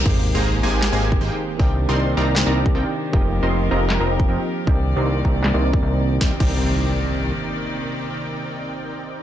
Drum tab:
CC |x---------------|----------------|----------------|----------------|
CP |--------x-------|--------x-------|--------x-------|--------x-------|
SD |--------o-------|--------o-------|--------o-------|--------o-------|
BD |o----------o----|o----------o----|o----------o----|o-----o----o----|

CC |--x-------------|----------------|
CP |----------------|----------------|
SD |o---------------|----------------|
BD |o-o-------------|----------------|